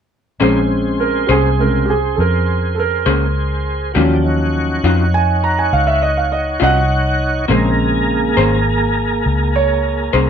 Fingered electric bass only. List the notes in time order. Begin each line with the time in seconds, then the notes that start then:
0.41 A#1
1.29 C2
2.18 F2
3.06 C#2
3.96 D#2
4.84 F2
5.73 C#2
6.62 C2
7.49 A#1
8.37 G#1
9.26 C#2
10.14 C2